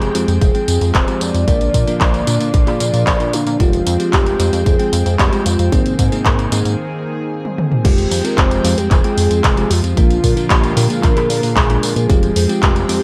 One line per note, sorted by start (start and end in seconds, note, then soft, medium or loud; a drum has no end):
0.00 0.10 F1 medium
0.00 5.68 F3 medium
0.00 0.12 G#3 medium
0.00 1.46 G#3 medium
0.00 0.12 C4 medium
0.00 1.44 C4 medium
0.00 0.12 F4 medium
0.00 0.12 G4 medium
0.00 0.38 G#4 loud
0.00 1.46 G5 medium
0.00 closed hi-hat soft
0.00 tambourine soft
0.15 0.26 F2 medium
0.15 0.36 G#3 medium
0.15 0.36 C4 medium
0.15 0.36 F4 medium
0.15 0.36 G4 loud
0.15 closed hi-hat medium
0.15 tambourine medium
0.28 0.39 F2 medium
0.28 closed hi-hat soft
0.28 tambourine soft
0.41 0.52 F1 loud
0.41 0.96 G#4 loud
0.41 kick loud
0.41 closed hi-hat medium
0.41 tambourine soft
0.55 1.05 G#3 medium
0.55 1.05 C4 medium
0.55 1.05 F4 medium
0.55 1.05 G5 medium
0.55 closed hi-hat soft
0.55 tambourine soft
0.68 0.79 F2 medium
0.68 closed hi-hat medium
0.68 tambourine medium
0.81 0.92 F2 medium
0.81 closed hi-hat soft
0.81 tambourine soft
0.95 1.05 F1 loud
0.95 1.23 C5 loud
0.95 kick loud
0.95 clap loud
0.95 closed hi-hat medium
0.95 tambourine soft
1.08 1.44 G#3 medium
1.08 1.44 C4 medium
1.08 1.44 F4 medium
1.08 1.44 G4 medium
1.08 closed hi-hat soft
1.08 tambourine soft
1.21 1.32 F2 medium
1.21 3.35 D5 loud
1.21 closed hi-hat medium
1.21 tambourine medium
1.34 1.45 F2 medium
1.34 closed hi-hat soft
1.34 tambourine soft
1.48 1.69 A#1 loud
1.48 1.69 A#2 medium
1.48 3.58 D3 medium
1.48 3.58 A#3 medium
1.48 1.69 A#3 medium
1.48 1.69 D4 medium
1.48 3.58 F4 medium
1.48 1.69 F4 medium
1.48 1.69 A#4 medium
1.48 kick loud
1.48 closed hi-hat medium
1.48 tambourine soft
1.61 closed hi-hat soft
1.61 tambourine soft
1.74 1.85 A#2 medium
1.74 kick medium
1.74 closed hi-hat medium
1.74 tambourine medium
1.87 2.24 A#2 medium
1.87 2.24 A#3 medium
1.87 2.24 D4 medium
1.87 2.24 F4 medium
1.87 2.24 A#4 medium
1.87 closed hi-hat soft
1.87 tambourine soft
2.01 2.22 A#1 medium
2.01 kick loud
2.01 clap loud
2.01 closed hi-hat medium
2.01 tambourine soft
2.14 closed hi-hat soft
2.14 tambourine soft
2.27 2.48 A#2 medium
2.27 2.38 A#2 medium
2.27 2.48 A#3 medium
2.27 2.48 D4 medium
2.27 2.48 F4 medium
2.27 2.48 A#4 medium
2.27 closed hi-hat medium
2.27 tambourine medium
2.41 2.51 A#2 medium
2.41 closed hi-hat soft
2.41 tambourine soft
2.54 2.65 A#1 loud
2.54 kick loud
2.54 closed hi-hat medium
2.54 tambourine soft
2.67 3.17 A#2 medium
2.67 3.17 A#3 medium
2.67 3.17 D4 medium
2.67 3.17 F4 medium
2.67 3.17 G#4 medium
2.67 clap soft
2.67 closed hi-hat soft
2.67 tambourine soft
2.80 2.91 A#2 medium
2.80 closed hi-hat medium
2.80 tambourine medium
2.94 3.05 A#2 medium
2.94 closed hi-hat soft
2.94 tambourine soft
3.07 3.18 A#1 loud
3.07 kick loud
3.07 clap loud
3.07 closed hi-hat medium
3.07 tambourine soft
3.20 3.57 A#2 medium
3.20 3.57 A#3 medium
3.20 3.57 D4 medium
3.20 3.57 F4 medium
3.20 3.57 A#4 medium
3.20 closed hi-hat soft
3.20 tambourine soft
3.33 3.44 A#2 medium
3.33 3.62 D4 loud
3.33 closed hi-hat medium
3.33 tambourine medium
3.47 3.58 A#2 medium
3.47 closed hi-hat soft
3.47 tambourine soft
3.60 3.82 F1 medium
3.60 3.81 G#3 medium
3.60 5.70 G#3 medium
3.60 3.81 C4 medium
3.60 7.81 C4 medium
3.60 3.81 F4 medium
3.60 4.15 F4 loud
3.60 3.81 G4 medium
3.60 5.70 G5 medium
3.60 kick loud
3.60 closed hi-hat medium
3.60 tambourine soft
3.73 closed hi-hat soft
3.73 tambourine soft
3.87 3.97 F2 medium
3.87 closed hi-hat medium
3.87 tambourine medium
4.00 4.36 G#3 medium
4.00 4.36 C4 medium
4.00 4.36 F4 medium
4.00 4.36 G4 loud
4.00 closed hi-hat soft
4.00 tambourine soft
4.13 4.35 F1 medium
4.13 4.66 G4 medium
4.13 kick loud
4.13 clap loud
4.13 closed hi-hat medium
4.13 tambourine soft
4.26 closed hi-hat soft
4.26 tambourine soft
4.39 4.50 F2 loud
4.39 4.61 G#3 medium
4.39 4.61 C4 medium
4.39 4.61 F4 medium
4.39 4.61 G4 loud
4.39 closed hi-hat medium
4.39 tambourine medium
4.53 4.64 F2 medium
4.53 closed hi-hat soft
4.53 tambourine soft
4.66 4.77 F1 loud
4.66 5.21 G#4 loud
4.66 kick loud
4.66 closed hi-hat medium
4.66 tambourine soft
4.79 5.29 G#3 medium
4.79 5.29 C4 medium
4.79 5.29 F4 medium
4.79 5.29 G5 loud
4.79 closed hi-hat soft
4.79 tambourine soft
4.93 5.04 F2 medium
4.93 closed hi-hat medium
4.93 tambourine medium
5.06 5.17 F2 medium
5.06 closed hi-hat soft
5.06 tambourine soft
5.19 5.30 F1 loud
5.19 5.47 G4 medium
5.19 kick loud
5.19 clap loud
5.19 closed hi-hat medium
5.19 tambourine soft
5.32 5.69 G#3 medium
5.32 5.69 C4 medium
5.32 5.69 F4 medium
5.32 5.69 G4 medium
5.32 closed hi-hat soft
5.32 tambourine soft
5.46 5.57 F2 medium
5.46 5.72 F4 medium
5.46 closed hi-hat medium
5.46 tambourine medium
5.59 5.70 F2 medium
5.59 closed hi-hat soft
5.59 tambourine soft
5.72 5.94 G#1 loud
5.72 5.93 G#2 medium
5.72 7.83 D#3 medium
5.72 7.83 A#3 medium
5.72 5.93 A#3 medium
5.72 5.93 C4 medium
5.72 6.75 C4 medium
5.72 5.93 D#4 medium
5.72 7.83 G#4 medium
5.72 5.93 G#4 medium
5.72 kick loud
5.72 closed hi-hat medium
5.72 tambourine soft
5.86 closed hi-hat soft
5.86 tambourine soft
5.99 6.10 G#2 medium
5.99 kick medium
5.99 closed hi-hat medium
5.99 tambourine medium
6.12 6.49 G#2 medium
6.12 6.49 A#3 medium
6.12 6.49 C4 medium
6.12 6.49 D#4 medium
6.12 6.49 G#4 medium
6.12 closed hi-hat soft
6.12 tambourine soft
6.25 6.47 G#1 medium
6.25 kick loud
6.25 clap loud
6.25 closed hi-hat medium
6.25 tambourine soft
6.39 closed hi-hat soft
6.39 tambourine soft
6.52 6.63 G#2 loud
6.52 6.73 G#2 medium
6.52 6.73 A#3 medium
6.52 6.73 C4 medium
6.52 6.73 D#4 medium
6.52 6.73 G#4 loud
6.52 closed hi-hat medium
6.52 tambourine medium
6.65 6.76 G#2 medium
6.65 closed hi-hat soft
6.65 tambourine soft
7.45 high tom soft
7.58 mid tom medium
7.72 mid tom medium
7.85 8.06 F1 loud
7.85 13.03 F3 medium
7.85 8.06 G#3 medium
7.85 9.95 G#3 medium
7.85 8.06 C4 medium
7.85 9.95 C4 medium
7.85 8.06 F4 medium
7.85 8.06 G4 loud
7.85 8.26 G4 loud
7.85 9.95 G5 medium
7.85 kick loud
7.85 closed hi-hat medium
7.85 crash loud
7.85 tambourine soft
7.98 closed hi-hat soft
7.98 tambourine soft
8.11 8.22 F2 medium
8.11 open hi-hat loud
8.11 tambourine medium
8.25 8.61 G#3 medium
8.25 8.61 C4 medium
8.25 8.61 F4 medium
8.25 8.61 G4 medium
8.25 8.39 A#4 loud
8.25 closed hi-hat soft
8.25 tambourine soft
8.38 8.60 F1 medium
8.38 8.79 C5 loud
8.38 kick loud
8.38 clap loud
8.38 closed hi-hat medium
8.38 tambourine soft
8.51 closed hi-hat soft
8.51 tambourine soft
8.64 8.75 F2 loud
8.64 8.86 G#3 medium
8.64 8.86 C4 medium
8.64 8.86 F4 medium
8.64 8.86 G4 loud
8.64 open hi-hat loud
8.64 tambourine medium
8.78 8.89 F2 medium
8.78 8.90 G4 medium
8.78 closed hi-hat soft
8.78 tambourine soft
8.91 9.02 F1 loud
8.91 9.72 G#4 loud
8.91 kick loud
8.91 clap medium
8.91 closed hi-hat medium
8.91 tambourine soft
9.04 9.54 G#3 medium
9.04 9.54 C4 medium
9.04 9.54 F4 medium
9.04 9.54 G5 loud
9.04 closed hi-hat soft
9.04 tambourine soft
9.17 9.28 F2 medium
9.17 open hi-hat loud
9.17 tambourine medium
9.31 9.42 F2 medium
9.31 closed hi-hat soft
9.31 tambourine soft
9.44 9.66 F1 medium
9.44 kick loud
9.44 clap loud
9.44 closed hi-hat medium
9.44 tambourine soft
9.57 9.94 G#3 medium
9.57 9.94 C4 medium
9.57 9.94 F4 medium
9.57 9.94 G4 medium
9.57 closed hi-hat soft
9.57 tambourine soft
9.70 9.81 F2 medium
9.70 10.52 F4 loud
9.70 open hi-hat loud
9.70 tambourine medium
9.84 9.95 F2 medium
9.84 closed hi-hat soft
9.84 tambourine soft
9.97 10.19 A#1 loud
9.97 10.18 A#2 medium
9.97 12.08 D3 medium
9.97 10.18 A#3 medium
9.97 12.08 A#3 medium
9.97 10.18 D4 medium
9.97 10.18 F4 medium
9.97 12.08 F4 medium
9.97 10.18 A#4 medium
9.97 kick loud
9.97 closed hi-hat medium
9.97 tambourine soft
10.11 closed hi-hat soft
10.11 tambourine soft
10.24 10.35 A#2 medium
10.24 kick medium
10.24 open hi-hat loud
10.24 tambourine medium
10.37 10.74 A#2 medium
10.37 10.74 A#3 medium
10.37 10.74 D4 medium
10.37 10.74 F4 medium
10.37 10.74 A#4 loud
10.37 closed hi-hat soft
10.37 tambourine soft
10.50 10.72 A#1 medium
10.50 10.92 G4 loud
10.50 kick loud
10.50 clap loud
10.50 closed hi-hat medium
10.50 tambourine soft
10.64 closed hi-hat soft
10.64 tambourine soft
10.77 10.88 A#2 loud
10.77 10.98 A#2 medium
10.77 10.98 A#3 medium
10.77 10.98 D4 medium
10.77 10.98 F4 medium
10.77 10.98 A#4 loud
10.77 open hi-hat loud
10.77 tambourine medium
10.90 11.01 A#2 medium
10.90 11.05 G#4 loud
10.90 closed hi-hat soft
10.90 tambourine soft
11.03 11.14 A#1 loud
11.03 11.58 A#4 loud
11.03 kick loud
11.03 clap medium
11.03 closed hi-hat medium
11.03 tambourine soft
11.17 11.67 A#2 medium
11.17 11.67 A#3 medium
11.17 11.67 D4 medium
11.17 11.67 F4 medium
11.17 11.67 G#4 loud
11.17 clap soft
11.17 closed hi-hat soft
11.17 tambourine soft
11.30 11.41 A#2 medium
11.30 open hi-hat loud
11.30 tambourine medium
11.43 11.54 A#2 medium
11.43 open hi-hat medium
11.43 tambourine soft
11.56 11.78 A#1 medium
11.56 11.96 G#4 loud
11.56 kick loud
11.56 clap loud
11.56 closed hi-hat medium
11.56 tambourine soft
11.70 12.06 A#2 medium
11.70 12.06 A#3 medium
11.70 12.06 D4 medium
11.70 12.06 F4 medium
11.70 12.06 A#4 medium
11.70 closed hi-hat soft
11.70 tambourine soft
11.83 11.94 A#2 loud
11.83 open hi-hat loud
11.83 tambourine medium
11.96 12.07 A#2 medium
11.96 12.51 G#4 loud
11.96 closed hi-hat soft
11.96 tambourine soft
12.10 12.31 F1 loud
12.10 12.31 G#3 medium
12.10 13.03 G#3 medium
12.10 12.31 C4 medium
12.10 13.03 C4 medium
12.10 12.31 F4 medium
12.10 12.31 G4 medium
12.10 13.03 G5 medium
12.10 kick loud
12.10 closed hi-hat medium
12.10 tambourine soft
12.23 closed hi-hat soft
12.23 tambourine soft
12.36 12.47 F2 medium
12.36 open hi-hat loud
12.36 tambourine medium
12.49 12.86 G#3 medium
12.49 12.86 C4 medium
12.49 12.86 F4 medium
12.49 12.86 G4 loud
12.49 13.02 G4 loud
12.49 closed hi-hat soft
12.49 tambourine soft
12.63 12.84 F1 medium
12.63 kick loud
12.63 clap loud
12.63 closed hi-hat medium
12.63 tambourine soft
12.76 closed hi-hat soft
12.76 tambourine soft
12.89 13.00 F2 loud
12.89 13.03 G#3 medium
12.89 13.03 C4 medium
12.89 13.03 F4 medium
12.89 13.03 G4 loud
12.89 open hi-hat loud
12.89 tambourine medium